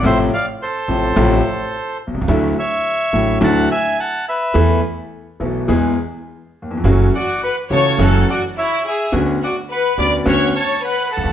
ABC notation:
X:1
M:4/4
L:1/16
Q:1/4=106
K:Emix
V:1 name="Bandoneon"
[=ce]2 [d=f]2 [Ac]8- [Ac]2 z2 | z2 [ce]6 [fa]2 [eg]2 [fa]2 [Be]2- | [Be]2 z12 z2 | z2 [df]2 [fb]2 [ac']2 [fa]2 [df]2 [ce]2 [eg]2 |
z2 [df]2 [fb]2 [bd']2 [fc']2 [ac']2 [fb]2 [fa]2 |]
V:2 name="Violin section"
z16 | z16 | z16 | z2 F2 B2 c2 A2 F2 E2 G2 |
z2 F2 B2 d2 c2 c2 B2 A2 |]
V:3 name="Grand piano" clef=bass
[A,,,A,,=C,=F,A,=F]2 z4 [A,,,A,,C,F,A,F]2 [A,,,A,,C,F,A,F]2 z4 z/2 B,,,/2 =C,,/2 ^C,,/2 | [D,,D,F,A,E]2 z4 [A,,,A,,D,F,A,E]2 [D,,D,F,A,E]2 z6 | [E,,E,A,B,A]2 z4 [B,,,B,,E,A,B,A]2 [E,,E,G,B,G]2 z4 z/2 ^D,,/2 E,,/2 =F,,/2 | [F,,E,F,A,CF]2 z4 [C,,C,E,A,CF]2 [F,,E,F,A,CF]2 z6 |
[D,,D,B,CF]2 z4 [D,,D,B,CF]2 [D,,D,B,CF]2 z4 z/2 C,,/2 D,,/2 z/2 |]
V:4 name="Upright bass" clef=bass
A,,,3/2 z4 z/2 A,,,3/2 z/2 A,,,3/2 z4 z B,,,/2 =C,,/2 ^C,,/2 | D,,3/2 z4 z/2 A,,,3/2 z/2 D,,3/2 z6 z/2 | E,,3/2 z4 z/2 B,,,3/2 z/2 E,,3/2 z6 z/2 | F,,,3/2 z4 z/2 C,,3/2 z/2 F,,,3/2 z6 z/2 |
D,,3/2 z4 z/2 D,,3/2 z/2 D,,3/2 z4 z C,,/2 D,,/2 z/2 |]